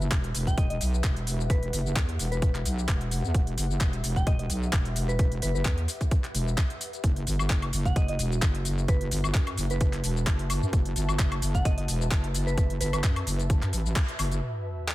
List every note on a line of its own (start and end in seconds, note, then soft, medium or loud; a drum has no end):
0.00 7.04 G4 medium
0.00 7.04 B4 medium
0.00 7.04 E5 medium
0.00 1.40 A5 medium
0.00 shaker soft
0.08 0.33 E1 loud
0.08 8.82 F#5 medium
0.08 kick loud
0.08 clap loud
0.08 closed hi-hat medium
0.12 shaker soft
0.24 closed hi-hat soft
0.35 0.56 E1 medium
0.35 open hi-hat loud
0.35 shaker medium
0.47 0.56 G5 medium
0.47 kick medium
0.47 closed hi-hat soft
0.47 shaker soft
0.58 0.79 E1 medium
0.58 0.66 D#5 medium
0.58 kick loud
0.58 closed hi-hat medium
0.58 shaker soft
0.70 0.77 D#5 medium
0.70 closed hi-hat medium
0.81 1.02 B1 loud
0.81 open hi-hat loud
0.81 shaker medium
0.94 shaker soft
1.04 1.48 E1 loud
1.04 kick loud
1.04 clap loud
1.04 closed hi-hat medium
1.04 shaker soft
1.17 closed hi-hat medium
1.27 open hi-hat loud
1.27 shaker medium
1.40 shaker soft
1.50 1.71 E1 loud
1.50 1.64 B4 medium
1.50 kick loud
1.50 closed hi-hat medium
1.50 shaker soft
1.63 closed hi-hat medium
1.73 1.94 F#1 medium
1.73 open hi-hat loud
1.73 shaker medium
1.86 shaker soft
1.96 2.17 E2 medium
1.96 kick loud
1.96 clap loud
1.96 closed hi-hat medium
1.96 shaker soft
2.09 closed hi-hat medium
2.19 2.64 E1 medium
2.19 open hi-hat loud
2.19 shaker medium
2.31 2.65 B4 medium
2.31 closed hi-hat soft
2.31 shaker soft
2.42 kick loud
2.42 closed hi-hat medium
2.42 shaker soft
2.55 clap soft
2.55 closed hi-hat medium
2.65 2.87 B1 medium
2.65 open hi-hat loud
2.65 shaker medium
2.79 shaker soft
2.88 3.22 E1 loud
2.88 kick loud
2.88 clap loud
2.88 closed hi-hat medium
2.88 shaker soft
3.01 closed hi-hat medium
3.11 open hi-hat loud
3.11 shaker medium
3.24 3.33 E2 medium
3.24 shaker soft
3.34 3.56 E1 medium
3.34 kick loud
3.34 closed hi-hat medium
3.34 shaker soft
3.47 closed hi-hat soft
3.58 3.79 F#1 medium
3.58 open hi-hat loud
3.58 shaker medium
3.71 shaker soft
3.81 4.02 E1 loud
3.81 kick loud
3.81 clap loud
3.81 closed hi-hat medium
3.81 shaker soft
3.93 closed hi-hat soft
4.04 4.25 E1 medium
4.04 open hi-hat loud
4.04 shaker medium
4.16 4.25 G5 medium
4.16 kick medium
4.16 closed hi-hat soft
4.16 shaker soft
4.27 4.48 E1 loud
4.27 4.35 D#5 medium
4.27 kick loud
4.27 closed hi-hat medium
4.27 shaker soft
4.39 4.46 D#5 medium
4.39 closed hi-hat medium
4.50 4.71 B1 loud
4.50 open hi-hat loud
4.50 shaker medium
4.63 shaker soft
4.73 5.17 E1 loud
4.73 kick loud
4.73 clap loud
4.73 closed hi-hat medium
4.73 shaker soft
4.85 closed hi-hat medium
4.96 open hi-hat loud
4.96 shaker medium
5.08 5.21 B4 medium
5.08 shaker soft
5.19 5.41 E1 loud
5.19 kick loud
5.19 closed hi-hat medium
5.19 shaker soft
5.32 closed hi-hat soft
5.42 5.64 F#1 medium
5.42 5.50 B4 medium
5.42 open hi-hat loud
5.42 shaker medium
5.55 5.62 B4 medium
5.55 shaker soft
5.65 5.87 E2 loud
5.65 kick loud
5.65 clap loud
5.65 closed hi-hat medium
5.65 shaker soft
5.78 closed hi-hat medium
5.88 open hi-hat loud
5.88 shaker medium
6.01 kick medium
6.01 closed hi-hat soft
6.01 shaker soft
6.11 kick loud
6.11 closed hi-hat medium
6.11 shaker soft
6.24 clap soft
6.24 closed hi-hat medium
6.34 6.56 E1 loud
6.34 open hi-hat loud
6.34 shaker medium
6.48 shaker soft
6.58 kick loud
6.58 clap loud
6.58 closed hi-hat medium
6.58 shaker soft
6.70 closed hi-hat soft
6.81 open hi-hat loud
6.81 shaker medium
6.93 closed hi-hat soft
6.93 shaker soft
7.04 7.25 F#1 medium
7.04 14.42 F#4 medium
7.04 kick loud
7.04 closed hi-hat medium
7.04 shaker soft
7.16 closed hi-hat medium
7.27 7.48 G1 medium
7.27 14.95 B4 medium
7.27 14.95 E5 medium
7.27 open hi-hat loud
7.27 shaker medium
7.39 high woodblock medium
7.39 shaker soft
7.50 7.71 F#1 loud
7.50 kick loud
7.50 clap loud
7.50 closed hi-hat medium
7.50 shaker soft
7.62 closed hi-hat soft
7.62 high woodblock medium
7.73 7.94 F#1 loud
7.73 open hi-hat loud
7.73 shaker medium
7.85 7.94 F#5 medium
7.85 kick medium
7.85 closed hi-hat soft
7.85 shaker soft
7.96 8.17 F#1 medium
7.96 8.04 D#5 medium
7.96 kick loud
7.96 closed hi-hat medium
7.96 shaker soft
8.08 8.15 D#5 medium
8.08 closed hi-hat medium
8.19 8.40 E1 medium
8.19 open hi-hat loud
8.19 shaker medium
8.32 shaker soft
8.42 8.87 F#1 medium
8.42 kick loud
8.42 clap loud
8.42 closed hi-hat medium
8.42 shaker soft
8.55 closed hi-hat medium
8.65 open hi-hat loud
8.65 shaker medium
8.78 shaker soft
8.88 9.10 F#1 loud
8.88 9.03 B4 medium
8.88 kick loud
8.88 closed hi-hat medium
8.88 shaker soft
9.00 14.95 A5 medium
9.00 closed hi-hat soft
9.11 9.33 G1 medium
9.11 open hi-hat loud
9.11 shaker medium
9.24 high woodblock medium
9.24 shaker soft
9.34 9.56 F#2 medium
9.34 kick loud
9.34 clap loud
9.34 closed hi-hat medium
9.34 shaker soft
9.47 closed hi-hat soft
9.47 high woodblock medium
9.58 10.02 F#1 medium
9.58 open hi-hat loud
9.58 shaker medium
9.70 10.04 B4 medium
9.70 closed hi-hat soft
9.70 shaker soft
9.81 kick loud
9.81 closed hi-hat medium
9.81 shaker soft
9.93 clap soft
9.93 closed hi-hat medium
10.04 10.25 E1 loud
10.04 open hi-hat loud
10.04 shaker medium
10.17 shaker soft
10.27 10.60 F#1 loud
10.27 kick loud
10.27 clap loud
10.27 closed hi-hat medium
10.27 shaker soft
10.39 closed hi-hat medium
10.50 open hi-hat loud
10.50 high woodblock medium
10.50 shaker medium
10.62 10.71 F#2 loud
10.62 shaker soft
10.73 10.94 F#1 loud
10.73 kick loud
10.73 closed hi-hat medium
10.73 shaker soft
10.85 closed hi-hat medium
10.96 11.17 G1 medium
10.96 open hi-hat loud
10.96 shaker medium
11.09 high woodblock medium
11.09 shaker soft
11.19 11.41 F#1 medium
11.19 kick loud
11.19 clap loud
11.19 closed hi-hat medium
11.19 shaker soft
11.32 closed hi-hat medium
11.32 high woodblock medium
11.42 11.64 F#1 medium
11.42 open hi-hat loud
11.42 shaker medium
11.55 11.63 F#5 medium
11.55 kick medium
11.55 closed hi-hat soft
11.55 shaker soft
11.65 11.87 F#1 medium
11.65 11.73 D#5 medium
11.65 kick loud
11.65 closed hi-hat medium
11.65 shaker soft
11.78 11.84 D#5 medium
11.78 closed hi-hat medium
11.88 12.10 E1 medium
11.88 open hi-hat loud
11.88 shaker medium
12.01 shaker soft
12.11 12.56 F#1 loud
12.11 kick loud
12.11 clap loud
12.11 closed hi-hat medium
12.11 shaker soft
12.24 closed hi-hat medium
12.34 open hi-hat loud
12.34 shaker medium
12.47 12.59 B4 medium
12.47 shaker soft
12.58 12.79 F#1 medium
12.58 kick loud
12.58 closed hi-hat medium
12.58 shaker soft
12.70 closed hi-hat medium
12.81 13.02 G1 medium
12.81 12.89 B4 medium
12.81 open hi-hat loud
12.81 shaker medium
12.93 13.00 B4 medium
12.93 closed hi-hat soft
12.93 high woodblock medium
12.93 shaker medium
13.04 13.25 F#2 loud
13.04 kick loud
13.04 clap loud
13.04 closed hi-hat medium
13.04 shaker soft
13.16 closed hi-hat medium
13.16 high woodblock medium
13.27 13.60 F#1 loud
13.27 open hi-hat loud
13.27 shaker medium
13.39 closed hi-hat soft
13.39 shaker soft
13.50 kick loud
13.50 closed hi-hat medium
13.50 shaker soft
13.62 13.71 F#2 loud
13.62 clap soft
13.62 closed hi-hat medium
13.73 13.94 A1 medium
13.73 open hi-hat loud
13.73 shaker medium
13.86 shaker soft
13.96 kick loud
13.96 clap loud
13.96 closed hi-hat medium
13.96 shaker soft
14.08 closed hi-hat medium
14.19 14.41 F#1 medium
14.19 open hi-hat loud
14.19 high woodblock medium
14.19 shaker medium
14.32 closed hi-hat soft
14.32 shaker soft
14.42 14.95 G3 medium
14.42 sub drop medium
14.88 clap loud